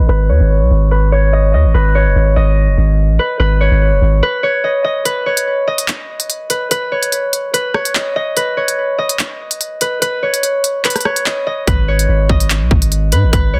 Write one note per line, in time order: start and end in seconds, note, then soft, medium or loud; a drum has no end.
0.00 0.29 C#5 medium
0.00 0.84 D#5 medium
0.09 0.31 G#1 loud
0.09 0.91 B4 loud
0.29 0.40 D#2 medium
0.29 1.12 C#5 medium
0.40 0.63 G#1 loud
0.61 0.70 B1 loud
0.71 1.55 G#1 loud
0.91 1.74 B4 medium
1.12 1.95 C#5 medium
1.33 1.53 D#5 medium
1.54 1.66 D#2 loud
1.54 2.36 D#5 medium
1.65 1.74 G#1 loud
1.74 2.07 G#1 loud
1.74 3.19 B4 loud
1.95 3.60 C#5 medium
2.06 2.15 F#1 loud
2.16 2.36 G#1 loud
2.36 2.69 G#1 loud
2.36 4.15 D#5 medium
2.68 2.77 F#1 loud
2.78 3.11 G#1 loud
3.09 3.19 A1 loud
3.19 3.39 B4 medium
3.40 3.70 G#1 loud
3.40 4.22 B4 loud
3.61 4.43 C#5 medium
3.71 3.94 G#1 loud
3.92 4.01 F#1 loud
4.02 4.22 G#1 loud
4.23 5.05 B4 loud
4.43 5.26 C#5 medium
4.64 4.84 D#5 medium
4.84 5.67 D#5 medium
5.05 6.50 B4 loud
5.05 closed hi-hat medium
5.26 6.91 C#5 medium
5.37 closed hi-hat medium
5.67 7.46 D#5 medium
5.78 closed hi-hat medium
5.88 clap loud
5.88 closed hi-hat medium
6.20 closed hi-hat medium
6.30 closed hi-hat medium
6.50 6.71 B4 medium
6.50 closed hi-hat medium
6.71 7.53 B4 loud
6.71 closed hi-hat medium
6.92 7.74 C#5 medium
7.03 closed hi-hat medium
7.12 closed hi-hat medium
7.33 closed hi-hat medium
7.54 8.36 B4 medium
7.54 closed hi-hat medium
7.74 8.57 C#5 medium
7.74 cross-stick medium
7.85 closed hi-hat medium
7.95 8.15 D#5 medium
7.95 clap loud
8.16 8.98 D#5 medium
8.37 9.81 B4 loud
8.37 closed hi-hat medium
8.57 10.22 C#5 medium
8.68 closed hi-hat medium
8.98 10.77 D#5 medium
9.09 closed hi-hat medium
9.19 clap loud
9.19 closed hi-hat medium
9.51 closed hi-hat medium
9.61 closed hi-hat medium
9.81 10.01 B4 medium
9.81 closed hi-hat medium
10.02 10.84 B4 loud
10.02 closed hi-hat medium
10.23 11.05 C#5 medium
10.34 closed hi-hat medium
10.43 closed hi-hat medium
10.64 closed hi-hat medium
10.85 11.67 B4 medium
10.85 clap medium
10.85 closed hi-hat medium
10.90 closed hi-hat medium
10.96 cross-stick medium
10.96 closed hi-hat medium
11.01 closed hi-hat medium
11.05 11.88 C#5 medium
11.05 cross-stick medium
11.16 closed hi-hat medium
11.26 11.46 D#5 medium
11.26 clap loud
11.47 12.29 D#5 medium
11.67 12.07 G#1 loud
11.67 13.12 B4 loud
11.67 kick loud
11.67 closed hi-hat medium
11.88 13.53 C#5 medium
11.99 closed hi-hat medium
12.09 12.29 G#1 loud
12.29 12.63 G#1 loud
12.29 13.60 D#5 loud
12.29 kick medium
12.40 closed hi-hat medium
12.50 clap loud
12.50 closed hi-hat medium
12.61 12.70 B1 loud
12.71 13.14 G#1 loud
12.71 kick loud
12.82 closed hi-hat medium
12.92 closed hi-hat medium
13.12 13.25 G#2 loud
13.12 13.33 B4 medium
13.12 closed hi-hat medium
13.23 13.33 G#1 loud
13.33 13.55 G#1 loud
13.33 13.60 B4 loud
13.33 kick loud
13.33 closed hi-hat medium
13.54 13.60 D#2 loud
13.54 13.60 C#5 medium